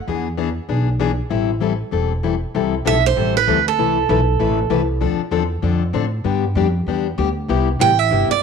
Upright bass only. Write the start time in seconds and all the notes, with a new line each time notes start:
0.08 E2
0.69 B1
1.31 A1
1.93 E1
2.55 C2
2.86 B1
3.17 A1
3.48 D2
3.79 C2
4.09 B1
4.40 A1
4.70 C2
5.01 D2
5.19 muted upright bass stroke
5.31 E2
5.63 F2
5.93 A2
6.25 G2
6.55 F2
6.86 E2
7.18 D2
7.49 C2
7.80 A1
8.11 G1
8.29 muted upright bass stroke